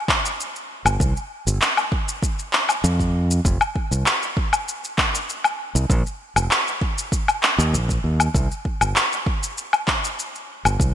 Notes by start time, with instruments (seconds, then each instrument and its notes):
0.08 kick, clap
0.25 shaker
0.40 shaker
0.56 shaker
0.85 fingered electric bass G1, low woodblock, shaker
1.00 fingered electric bass C2, kick, shaker
1.17 shaker
1.47 fingered electric bass G1, shaker
1.62 clap, shaker
1.77 low woodblock, shaker
1.92 kick
2.08 shaker
2.23 kick, shaker
2.39 shaker
2.53 clap
2.69 low woodblock, shaker
2.84 fingered electric bass F2, shaker
3.00 kick, shaker
3.31 shaker
3.45 fingered electric bass F1, kick, shaker
3.61 low woodblock, shaker
3.76 kick
3.91 fingered electric bass C2, shaker
4.06 clap, shaker
4.22 shaker
4.37 kick
4.53 low woodblock, shaker
4.68 shaker
4.84 shaker
4.98 kick, clap
5.15 shaker
5.29 shaker
5.44 low woodblock, shaker
5.75 fingered electric bass C2, shaker
5.90 fingered electric bass A#1, kick, shaker
6.06 shaker
6.36 fingered electric bass F1, low woodblock, shaker
6.51 clap, shaker
6.68 shaker
6.81 kick
6.98 shaker
7.12 kick, shaker
7.28 low woodblock, shaker
7.43 clap
7.58 fingered electric bass D#2, shaker
7.73 fingered electric bass A#1, shaker
7.89 kick, shaker
8.04 fingered electric bass D#2
8.20 low woodblock, shaker
8.35 fingered electric bass C2, kick, shaker
8.51 shaker
8.65 kick
8.81 fingered electric bass G1, low woodblock, shaker
8.96 clap, shaker
9.12 shaker
9.26 kick
9.43 shaker
9.58 shaker
9.73 low woodblock, shaker
9.88 kick, clap
10.04 shaker
10.19 shaker
10.35 shaker
10.65 fingered electric bass G1, low woodblock, shaker
10.80 fingered electric bass C2, kick, shaker